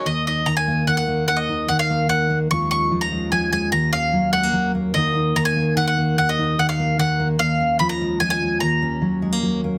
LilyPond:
<<
  \new Staff \with { instrumentName = "Mandolin" } { \time 3/4 \key ees \minor \tempo 4 = 147 ees''8 ees''8 bes''16 aes''8. ges''16 ges''8. | ges''16 ees''8. ges''16 f''8. ges''8. r16 | des'''8 des'''8. bes''8. aes''8 aes''8 | bes''8 f''4 ges''4 r8 |
ees''4 bes''16 aes''8. ges''16 ges''8. | ges''16 ees''8. ges''16 f''8. ges''8. r16 | f''4 ces'''16 bes''8. aes''16 aes''8. | bes''2 r4 | }
  \new Staff \with { instrumentName = "Steel-string acoustic guitar" } { \clef bass \time 3/4 \key ees \minor << { r8 ees'4 bes4 bes8 | r8 ees'4 bes4 bes8 | <f aes des' f'>8 des'4 aes4 aes8 | r8 des'4 aes16 bes8. bes8 |
<ees bes ees' ges'>8 ees'4 bes4 bes8 | r8 ees'4 bes4 bes8 | r8 des'4 aes4 aes8 | r8 des'4 aes16 bes8. bes8 | } \\ { ees,4 ees4 ees4 | ees,4 ees4 ees4 | ees,4 f4 f4 | ees,4 ges4 ges4 |
ees,4 ees4 ees4 | ees,4 ees4 ees4 | ees,4 f4 f4 | ees,4 ges4 ges4 | } >> }
>>